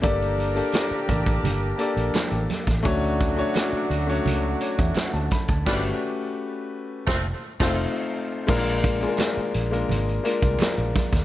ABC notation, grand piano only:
X:1
M:4/4
L:1/16
Q:1/4=85
K:Glyd
V:1 name="Grand piano"
[_B,DGAd]3 [B,DGAd]3 [B,DGAd]3 z [B,DGAd]4- [B,DGAd] z | [A,CDFc]3 [A,CDFc]3 z [A,CDFc]3 c e f a b a | [A,CFGB]2 z8 z [A,=C_E=F=c]2 z3 | [K:Bbmix] [A,B,DFB]3 [A,B,DFAB]3 z [A,B,DFB]3 [A,B,DFB]4- [A,B,DFB] z |]